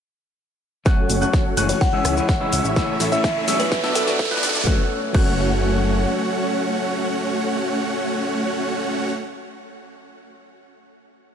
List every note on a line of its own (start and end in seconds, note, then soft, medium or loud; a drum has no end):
0.85 1.19 F#3 medium
0.85 1.19 A3 medium
0.85 1.19 C#4 medium
0.85 1.19 F#4 medium
0.85 1.80 A4 medium
0.85 1.19 C#5 medium
0.85 1.80 C#5 medium
0.85 1.19 F#5 loud
0.85 1.80 F#5 medium
0.85 3.69 C#6 medium
0.85 1.19 F#6 medium
0.85 kick loud
0.85 snare soft
0.85 riser medium
0.85 shaker soft
1.10 1.25 F#1 medium
1.10 open hi-hat loud
1.10 shaker medium
1.21 1.54 F#3 medium
1.21 1.54 A3 medium
1.21 1.54 C#4 medium
1.21 1.55 C#4 medium
1.21 1.54 F#4 medium
1.21 1.55 F#4 medium
1.21 1.54 C#5 medium
1.21 1.54 F#5 medium
1.21 1.54 F#6 medium
1.21 shaker soft
1.33 kick loud
1.33 snare soft
1.33 shaker soft
1.57 1.72 F#1 medium
1.57 1.90 E3 medium
1.57 1.90 G#3 medium
1.57 1.76 A3 medium
1.57 1.76 C#4 medium
1.57 1.90 C#4 medium
1.57 1.76 F#4 medium
1.57 1.91 F#4 loud
1.57 1.76 C#5 medium
1.57 1.76 F#5 loud
1.57 1.76 F#6 loud
1.57 open hi-hat loud
1.57 shaker medium
1.69 1.79 C#5 medium
1.69 open hi-hat medium
1.69 shaker soft
1.81 2.75 G#4 medium
1.81 2.75 C#5 medium
1.81 3.70 E5 medium
1.81 1.92 F#5 medium
1.81 kick loud
1.81 snare medium
1.81 shaker soft
1.92 2.14 E3 medium
1.92 2.23 G#3 medium
1.92 2.14 G#3 medium
1.92 2.23 C#4 medium
1.92 2.14 C#4 medium
1.92 2.23 E4 medium
1.92 2.14 G#4 loud
1.92 2.23 C#5 medium
1.92 2.23 E5 loud
1.92 2.23 E6 loud
2.05 2.20 C#2 medium
2.05 cross-stick medium
2.05 open hi-hat loud
2.05 shaker medium
2.16 2.28 E3 medium
2.16 2.28 G#3 medium
2.16 2.28 C#4 medium
2.16 2.29 E4 loud
2.16 shaker soft
2.29 kick loud
2.29 snare medium
2.29 shaker soft
2.40 2.52 E3 medium
2.40 2.52 G#3 medium
2.40 2.74 G#3 medium
2.40 2.74 C#4 medium
2.40 2.52 C#4 medium
2.40 2.74 E4 medium
2.40 2.52 E4 medium
2.40 2.74 C#5 medium
2.40 2.74 E5 medium
2.40 2.73 E6 medium
2.53 2.60 C#2 medium
2.53 open hi-hat loud
2.53 shaker medium
2.64 2.80 A1 loud
2.64 shaker soft
2.76 3.09 A2 medium
2.76 3.09 E3 medium
2.76 3.09 A3 medium
2.76 3.09 C#4 medium
2.76 3.09 E4 medium
2.76 3.10 E4 medium
2.76 3.71 A4 medium
2.76 3.09 C#5 medium
2.76 3.71 C#5 medium
2.76 3.09 E6 loud
2.76 kick loud
2.76 snare medium
2.76 shaker soft
3.00 3.15 A1 loud
3.00 snare medium
3.00 open hi-hat loud
3.00 shaker medium
3.11 3.45 A2 medium
3.11 3.45 E3 medium
3.11 3.45 A3 medium
3.11 3.45 C#4 medium
3.11 3.45 E4 medium
3.11 3.45 C#5 medium
3.11 3.23 E5 medium
3.11 3.45 E5 medium
3.11 3.45 E6 medium
3.11 shaker soft
3.24 kick loud
3.24 snare medium
3.24 shaker soft
3.47 3.63 A1 medium
3.47 3.80 B2 medium
3.47 3.81 F#3 medium
3.47 3.67 A3 medium
3.47 3.81 B3 medium
3.47 3.67 C#4 medium
3.47 3.81 D4 medium
3.47 3.67 E4 medium
3.47 3.81 G#4 loud
3.47 3.67 C#5 medium
3.47 3.67 E5 loud
3.47 3.67 E6 loud
3.47 snare medium
3.47 open hi-hat loud
3.47 shaker medium
3.60 3.71 B4 medium
3.60 open hi-hat medium
3.60 shaker soft
3.72 4.66 B4 medium
3.72 4.66 D5 medium
3.72 4.66 F#5 medium
3.72 4.66 D6 medium
3.72 kick loud
3.72 snare medium
3.72 shaker soft
3.83 4.04 B2 medium
3.83 4.04 F#3 medium
3.83 4.04 B3 medium
3.83 4.14 B3 loud
3.83 4.14 D4 medium
3.83 4.05 D4 medium
3.83 4.14 F#4 medium
3.83 4.05 A4 loud
3.83 4.14 D5 medium
3.83 4.14 E5 loud
3.83 4.14 E6 loud
3.83 snare medium
3.95 4.10 B1 loud
3.95 4.03 A4 loud
3.95 snare loud
3.95 open hi-hat loud
3.95 shaker medium
4.07 4.18 B2 medium
4.07 4.19 F#3 medium
4.07 4.19 B3 medium
4.07 4.19 D4 medium
4.07 4.19 F#4 loud
4.07 4.15 A4 medium
4.07 snare medium
4.07 shaker soft
4.19 kick loud
4.19 snare loud
4.19 shaker soft
4.25 snare medium
4.30 4.42 B2 medium
4.30 4.42 F#3 medium
4.30 4.43 B3 medium
4.30 4.64 B3 medium
4.30 4.64 D4 medium
4.30 4.43 D4 medium
4.30 4.43 E4 medium
4.30 4.64 F#4 medium
4.30 4.64 D5 medium
4.30 4.64 F#5 medium
4.30 4.64 F#6 loud
4.30 snare medium
4.37 snare medium
4.43 4.51 B1 medium
4.43 snare loud
4.43 open hi-hat loud
4.43 shaker medium
4.49 snare loud
4.55 4.62 B1 loud
4.55 snare loud
4.55 shaker soft
4.61 snare loud
4.65 4.80 F#1 loud
4.65 4.79 F#3 medium
4.65 4.80 A3 medium
4.65 8.64 A3 medium
4.65 4.80 C#4 medium
4.65 8.64 C#4 medium
4.65 4.81 C#4 medium
4.65 4.80 F#4 medium
4.65 8.64 F#4 medium
4.65 4.81 F#4 medium
4.65 4.80 C#5 medium
4.65 8.64 C#5 medium
4.65 4.80 F#5 loud
4.65 8.64 F#5 medium
4.65 4.80 F#6 medium
4.65 kick loud
4.65 snare medium
5.13 6.06 F#1 loud
5.13 9.09 F#3 medium
5.13 9.11 A3 medium
5.13 9.11 C#4 medium
5.13 9.12 C#4 medium
5.13 9.11 F#4 medium
5.13 9.13 F#4 loud
5.13 9.11 C#5 medium
5.13 9.11 F#5 medium
5.13 9.11 F#6 medium
5.13 kick loud
5.13 crash medium